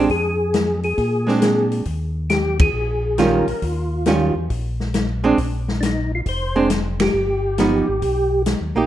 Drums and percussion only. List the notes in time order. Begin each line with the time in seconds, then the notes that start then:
0.09 kick, open hi-hat
0.54 snare, closed hi-hat
0.83 open hi-hat
0.98 kick, open hi-hat
1.28 snare
1.42 snare, closed hi-hat
1.71 open hi-hat
1.85 kick, open hi-hat
2.30 snare, closed hi-hat
2.59 kick, ride
3.18 snare, closed hi-hat
3.48 open hi-hat
3.62 kick, open hi-hat
4.06 snare, closed hi-hat
4.50 kick, open hi-hat
4.80 snare
4.94 snare, closed hi-hat
5.38 kick, open hi-hat
5.68 snare
5.82 snare, closed hi-hat
6.26 kick, open hi-hat
6.70 snare, closed hi-hat
7.00 snare, ride
7.58 snare, closed hi-hat
8.02 kick, open hi-hat
8.46 snare, closed hi-hat